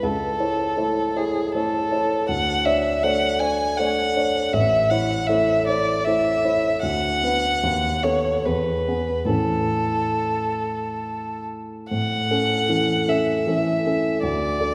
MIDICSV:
0, 0, Header, 1, 3, 480
1, 0, Start_track
1, 0, Key_signature, 3, "major"
1, 0, Tempo, 749064
1, 24, Time_signature, 3, 2, 24, 8
1, 2904, Tempo, 764331
1, 4344, Tempo, 824176
1, 5784, Tempo, 870827
1, 7224, Tempo, 768246
1, 8995, End_track
2, 0, Start_track
2, 0, Title_t, "Violin"
2, 0, Program_c, 0, 40
2, 22, Note_on_c, 0, 69, 58
2, 744, Note_on_c, 0, 68, 52
2, 754, Note_off_c, 0, 69, 0
2, 990, Note_off_c, 0, 68, 0
2, 994, Note_on_c, 0, 69, 52
2, 1458, Note_off_c, 0, 69, 0
2, 1468, Note_on_c, 0, 78, 65
2, 1701, Note_on_c, 0, 76, 55
2, 1711, Note_off_c, 0, 78, 0
2, 1941, Note_on_c, 0, 78, 62
2, 1950, Note_off_c, 0, 76, 0
2, 2177, Note_on_c, 0, 80, 62
2, 2187, Note_off_c, 0, 78, 0
2, 2417, Note_on_c, 0, 78, 65
2, 2427, Note_off_c, 0, 80, 0
2, 2905, Note_on_c, 0, 76, 66
2, 2914, Note_off_c, 0, 78, 0
2, 3135, Note_on_c, 0, 78, 61
2, 3145, Note_off_c, 0, 76, 0
2, 3369, Note_on_c, 0, 76, 66
2, 3378, Note_off_c, 0, 78, 0
2, 3616, Note_off_c, 0, 76, 0
2, 3619, Note_on_c, 0, 74, 62
2, 3856, Note_on_c, 0, 76, 60
2, 3866, Note_off_c, 0, 74, 0
2, 4339, Note_off_c, 0, 76, 0
2, 4343, Note_on_c, 0, 78, 72
2, 5046, Note_on_c, 0, 73, 55
2, 5055, Note_off_c, 0, 78, 0
2, 5290, Note_on_c, 0, 71, 45
2, 5298, Note_off_c, 0, 73, 0
2, 5781, Note_off_c, 0, 71, 0
2, 5784, Note_on_c, 0, 69, 55
2, 6972, Note_off_c, 0, 69, 0
2, 7222, Note_on_c, 0, 78, 70
2, 7959, Note_on_c, 0, 76, 48
2, 7969, Note_off_c, 0, 78, 0
2, 8671, Note_off_c, 0, 76, 0
2, 8675, Note_on_c, 0, 74, 61
2, 8995, Note_off_c, 0, 74, 0
2, 8995, End_track
3, 0, Start_track
3, 0, Title_t, "Grand piano"
3, 0, Program_c, 1, 0
3, 0, Control_c, 1, 64, 127
3, 18, Note_on_c, 1, 37, 36
3, 35, Control_c, 1, 64, 0
3, 135, Control_c, 1, 64, 127
3, 247, Note_off_c, 1, 37, 0
3, 256, Note_on_c, 1, 64, 27
3, 258, Note_on_c, 1, 73, 33
3, 474, Note_off_c, 1, 64, 0
3, 475, Note_off_c, 1, 73, 0
3, 494, Note_on_c, 1, 57, 30
3, 497, Note_on_c, 1, 64, 27
3, 498, Note_on_c, 1, 73, 28
3, 719, Note_off_c, 1, 57, 0
3, 720, Note_off_c, 1, 64, 0
3, 721, Note_off_c, 1, 73, 0
3, 744, Note_on_c, 1, 64, 29
3, 745, Note_on_c, 1, 73, 30
3, 967, Note_off_c, 1, 64, 0
3, 967, Note_off_c, 1, 73, 0
3, 992, Note_on_c, 1, 57, 29
3, 992, Note_on_c, 1, 64, 28
3, 997, Note_on_c, 1, 73, 31
3, 1208, Note_off_c, 1, 57, 0
3, 1208, Note_off_c, 1, 64, 0
3, 1211, Note_off_c, 1, 73, 0
3, 1230, Note_on_c, 1, 64, 29
3, 1232, Note_on_c, 1, 73, 33
3, 1442, Note_off_c, 1, 64, 0
3, 1443, Note_off_c, 1, 73, 0
3, 1465, Note_on_c, 1, 38, 37
3, 1476, Control_c, 1, 64, 0
3, 1574, Control_c, 1, 64, 127
3, 1692, Note_off_c, 1, 38, 0
3, 1702, Note_on_c, 1, 62, 33
3, 1704, Note_on_c, 1, 73, 37
3, 1917, Note_off_c, 1, 62, 0
3, 1918, Note_off_c, 1, 73, 0
3, 1946, Note_on_c, 1, 57, 29
3, 1947, Note_on_c, 1, 62, 33
3, 1951, Note_on_c, 1, 73, 34
3, 2163, Note_off_c, 1, 57, 0
3, 2163, Note_off_c, 1, 62, 0
3, 2165, Note_off_c, 1, 73, 0
3, 2183, Note_on_c, 1, 62, 28
3, 2185, Note_on_c, 1, 73, 33
3, 2401, Note_off_c, 1, 62, 0
3, 2402, Note_off_c, 1, 73, 0
3, 2429, Note_on_c, 1, 57, 32
3, 2432, Note_on_c, 1, 62, 33
3, 2435, Note_on_c, 1, 73, 35
3, 2643, Note_off_c, 1, 57, 0
3, 2644, Note_off_c, 1, 62, 0
3, 2646, Note_off_c, 1, 73, 0
3, 2670, Note_on_c, 1, 62, 31
3, 2671, Note_on_c, 1, 73, 34
3, 2883, Note_off_c, 1, 62, 0
3, 2883, Note_off_c, 1, 73, 0
3, 2904, Note_on_c, 1, 33, 41
3, 2913, Control_c, 1, 64, 0
3, 3001, Control_c, 1, 64, 127
3, 3132, Note_off_c, 1, 33, 0
3, 3142, Note_on_c, 1, 64, 33
3, 3144, Note_on_c, 1, 73, 33
3, 3356, Note_off_c, 1, 64, 0
3, 3358, Note_off_c, 1, 73, 0
3, 3381, Note_on_c, 1, 57, 33
3, 3382, Note_on_c, 1, 64, 33
3, 3384, Note_on_c, 1, 73, 36
3, 3601, Note_off_c, 1, 57, 0
3, 3601, Note_off_c, 1, 64, 0
3, 3603, Note_off_c, 1, 73, 0
3, 3631, Note_on_c, 1, 64, 30
3, 3632, Note_on_c, 1, 73, 35
3, 3846, Note_off_c, 1, 64, 0
3, 3847, Note_off_c, 1, 73, 0
3, 3869, Note_on_c, 1, 57, 33
3, 3871, Note_on_c, 1, 64, 30
3, 3876, Note_on_c, 1, 73, 35
3, 4081, Note_off_c, 1, 57, 0
3, 4082, Note_off_c, 1, 64, 0
3, 4085, Note_off_c, 1, 73, 0
3, 4106, Note_on_c, 1, 64, 33
3, 4108, Note_on_c, 1, 73, 36
3, 4321, Note_off_c, 1, 64, 0
3, 4322, Note_off_c, 1, 73, 0
3, 4346, Note_on_c, 1, 38, 39
3, 4354, Control_c, 1, 64, 0
3, 4471, Control_c, 1, 64, 127
3, 4569, Note_off_c, 1, 38, 0
3, 4582, Note_on_c, 1, 59, 30
3, 4585, Note_on_c, 1, 71, 35
3, 4791, Note_off_c, 1, 59, 0
3, 4792, Note_off_c, 1, 71, 0
3, 4814, Note_on_c, 1, 39, 41
3, 4819, Control_c, 1, 64, 0
3, 4934, Control_c, 1, 64, 127
3, 5043, Note_off_c, 1, 39, 0
3, 5051, Note_on_c, 1, 59, 29
3, 5052, Note_on_c, 1, 69, 29
3, 5269, Note_off_c, 1, 59, 0
3, 5270, Note_off_c, 1, 69, 0
3, 5296, Note_on_c, 1, 40, 36
3, 5304, Control_c, 1, 64, 0
3, 5391, Control_c, 1, 64, 127
3, 5531, Note_off_c, 1, 40, 0
3, 5540, Note_on_c, 1, 59, 29
3, 5543, Note_on_c, 1, 68, 30
3, 5757, Note_on_c, 1, 45, 32
3, 5763, Note_off_c, 1, 59, 0
3, 5764, Note_off_c, 1, 68, 0
3, 5764, Note_on_c, 1, 52, 23
3, 5772, Note_on_c, 1, 61, 25
3, 5779, Note_on_c, 1, 69, 22
3, 5796, Control_c, 1, 64, 0
3, 5887, Control_c, 1, 64, 127
3, 7189, Note_off_c, 1, 45, 0
3, 7192, Note_off_c, 1, 52, 0
3, 7196, Note_off_c, 1, 61, 0
3, 7199, Note_off_c, 1, 69, 0
3, 7225, Note_on_c, 1, 45, 34
3, 7236, Control_c, 1, 64, 0
3, 7320, Control_c, 1, 64, 127
3, 7461, Note_off_c, 1, 45, 0
3, 7473, Note_on_c, 1, 61, 28
3, 7474, Note_on_c, 1, 69, 33
3, 7689, Note_off_c, 1, 61, 0
3, 7690, Note_off_c, 1, 69, 0
3, 7711, Note_on_c, 1, 52, 27
3, 7713, Note_on_c, 1, 61, 27
3, 7719, Note_on_c, 1, 69, 28
3, 7929, Note_off_c, 1, 52, 0
3, 7930, Note_off_c, 1, 61, 0
3, 7933, Note_off_c, 1, 69, 0
3, 7956, Note_on_c, 1, 61, 29
3, 7959, Note_on_c, 1, 69, 30
3, 8175, Note_off_c, 1, 61, 0
3, 8177, Note_off_c, 1, 69, 0
3, 8197, Note_on_c, 1, 52, 29
3, 8203, Note_on_c, 1, 61, 30
3, 8204, Note_on_c, 1, 69, 32
3, 8415, Note_off_c, 1, 52, 0
3, 8418, Note_off_c, 1, 61, 0
3, 8419, Note_off_c, 1, 69, 0
3, 8441, Note_on_c, 1, 61, 29
3, 8444, Note_on_c, 1, 69, 28
3, 8651, Note_off_c, 1, 61, 0
3, 8653, Note_off_c, 1, 69, 0
3, 8673, Note_on_c, 1, 38, 35
3, 8684, Control_c, 1, 64, 0
3, 8777, Control_c, 1, 64, 127
3, 8898, Note_off_c, 1, 38, 0
3, 8902, Note_on_c, 1, 62, 29
3, 8907, Note_on_c, 1, 69, 31
3, 8995, Note_off_c, 1, 62, 0
3, 8995, Note_off_c, 1, 69, 0
3, 8995, End_track
0, 0, End_of_file